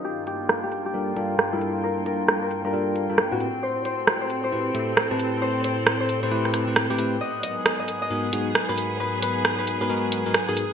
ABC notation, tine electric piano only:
X:1
M:4/4
L:1/16
Q:"Swing 16ths" 1/4=134
K:Aphr
V:1 name="Tine electric piano"
z8 [G,DFAB] z [G,DFAB] z2 [G,DFAB]3- | [G,DFAB]6- [G,DFAB] [G,DFAB] [G,DFAB]3 [G,DFAB] z [A,,CEG=B] z2 | z8 [A,,CEG=B] z [A,,CEGA] z2 [A,,CEGB]3- | [A,,CEG=B]6- [A,,CEGB] [A,,CEGB] [A,,CEGB]3 [A,,CEGB]2 [A,,CEGB] [A,,CEGB] z |
z8 [_A,,_C_E_GB] z [A,,CEG_A] z2 [A,,CEGB]3- | [_A,,_C_E_GB]6- [A,,CEGB] [A,,CEGB] [A,,CEGB]3 [A,,CEGB] z [A,,CEGB] z2 |]